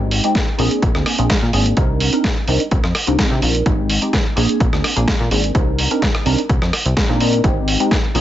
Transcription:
Already playing: analog synth bass G#1, analog polysynth G#3 C4 D#4 G4
0.11 open hi-hat
0.24 analog polysynth G#3 C4 D#4 G4, closed hi-hat
0.35 kick, snare, closed hi-hat
0.58 analog synth bass A#1, analog polysynth A#3 C4 D4 G#4, open hi-hat
0.71 closed hi-hat
0.82 analog synth bass A#1, kick, closed hi-hat
0.95 analog synth bass D2, cross-stick
1.06 cross-stick, open hi-hat
1.18 analog synth bass A#1, analog polysynth A#3 C4 D4 G#4, closed hi-hat
1.30 kick, snare, closed hi-hat
1.42 analog synth bass A#2
1.53 analog synth bass G#1, analog polysynth A#3 C4 D4 G#4, open hi-hat
1.66 closed hi-hat
1.77 analog synth bass C2, analog polysynth C4 D4 D#4 A#4, kick, closed hi-hat
2.00 open hi-hat
2.13 analog polysynth C4 D4 D#4 A#4, closed hi-hat
2.24 kick, snare, closed hi-hat
2.48 analog synth bass C2, analog polysynth C4 D4 D#4 A#4, open hi-hat
2.60 closed hi-hat
2.71 analog synth bass C2, kick, closed hi-hat
2.84 analog synth bass F2, cross-stick
2.95 cross-stick, open hi-hat
3.07 analog synth bass C2, analog polysynth C4 D4 D#4 A#4, closed hi-hat
3.19 kick, snare, closed hi-hat
3.31 analog synth bass C3
3.42 analog synth bass A#1, open hi-hat
3.55 closed hi-hat
3.66 analog synth bass G#1, analog polysynth G#3 C4 D#4 G4, kick, closed hi-hat
3.90 open hi-hat
4.02 analog polysynth G#3 C4 D#4 G4, closed hi-hat
4.13 kick, snare, closed hi-hat
4.36 analog synth bass A#1, analog polysynth A#3 C4 D4 G#4, open hi-hat
4.49 closed hi-hat
4.60 analog synth bass A#1, kick, closed hi-hat
4.73 analog synth bass D2, cross-stick
4.84 cross-stick, open hi-hat
4.96 analog synth bass A#1, analog polysynth A#3 C4 D4 G#4, closed hi-hat
5.08 kick, snare, closed hi-hat
5.20 analog synth bass A#2
5.31 analog synth bass G#1, analog polysynth A#3 C4 D4 G#4, open hi-hat
5.44 closed hi-hat
5.55 analog synth bass C2, analog polysynth C4 D4 D#4 A#4, kick, closed hi-hat
5.79 open hi-hat
5.91 analog polysynth C4 D4 D#4 A#4, closed hi-hat
6.02 kick, snare, closed hi-hat
6.15 cross-stick
6.26 analog synth bass C2, analog polysynth C4 D4 D#4 A#4, open hi-hat
6.38 closed hi-hat
6.49 analog synth bass C2, kick, closed hi-hat
6.62 analog synth bass F2, cross-stick
6.73 cross-stick, open hi-hat
6.86 analog synth bass C2, closed hi-hat
6.97 kick, snare, closed hi-hat
7.09 analog synth bass A#2, analog polysynth C4 D4 D#4 A#4
7.20 analog polysynth C4 D4 D#4 A#4, open hi-hat
7.33 closed hi-hat
7.44 analog synth bass G#1, analog polysynth G#3 C4 D#4 G4, kick, closed hi-hat
7.68 open hi-hat
7.80 analog polysynth G#3 C4 D#4 G4, closed hi-hat
7.91 kick, snare, closed hi-hat
8.14 analog synth bass A#1, analog polysynth A#3 C4 D4 G#4, open hi-hat

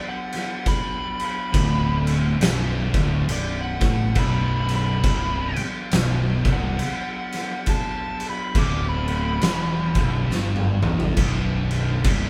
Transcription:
Already playing: tonewheel organ F#3 B3 D4
0.08 lead electric guitar F#5
0.33 snare, crash
0.66 lead electric guitar B5, kick, crash
1.20 crash
1.25 lead electric guitar B5
1.53 fingered electric bass D1, distorted electric guitar D2, kick, crash
2.07 crash
2.40 fingered electric bass B0, distorted electric guitar B1, snare, crash
2.93 fingered electric bass D1, distorted electric guitar D2, kick, crash
3.28 fingered electric bass B0, distorted electric guitar B1, lead electric guitar D5, crash
3.61 lead electric guitar F#5
3.81 fingered electric bass A1, distorted electric guitar A2, kick, snare, crash
4.15 fingered electric bass B0, distorted electric guitar B1, lead electric guitar B5, kick, crash
4.69 crash
4.75 lead electric guitar B5
5.03 fingered electric bass C1, distorted electric guitar C2, kick, crash
5.56 muted distorted electric guitar stroke, muted fingered electric bass stroke, crash
5.91 fingered electric bass B0, distorted electric guitar B1, snare, crash
6.45 fingered electric bass C1, distorted electric guitar C2, kick, crash
6.53 lead electric guitar F#5
6.79 crash
7.32 snare, crash
7.66 lead electric guitar A5, kick, crash
8.20 crash
8.30 lead electric guitar B5
8.55 fingered electric bass D1, distorted electric guitar D2, kick, crash
8.59 lead electric guitar D6
8.89 lead electric guitar B5
9.08 crash
9.41 fingered electric bass E1, distorted electric guitar E2, snare, crash
9.95 fingered electric bass B0, distorted electric guitar B1, kick, crash
10.28 fingered electric bass G1, distorted electric guitar G2, snare
10.56 high tom
10.82 fingered electric bass E1, distorted electric guitar E2, mid tom
11.00 floor tom
11.16 fingered electric bass B0, distorted electric guitar B1, kick, crash
11.71 crash
12.03 fingered electric bass C1, distorted electric guitar C2, kick, crash

